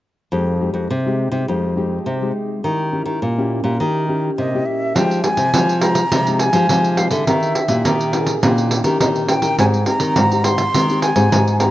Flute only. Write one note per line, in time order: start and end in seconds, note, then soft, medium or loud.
4.37 4.67 D#5 medium
4.66 4.97 E5 medium
4.95 5.23 G5 medium
5.24 5.78 G#5 medium
5.81 6.41 A#5 loud
6.40 6.99 G#5 loud
6.98 7.10 F5 medium
7.11 8.24 E5 medium
9.02 9.08 D#5 medium
9.29 9.56 G5 medium
9.59 9.66 G#5 medium
9.88 10.46 A#5 loud
10.45 11.02 C6 loud
11.03 11.57 G#5 medium
11.60 11.71 A#5 loud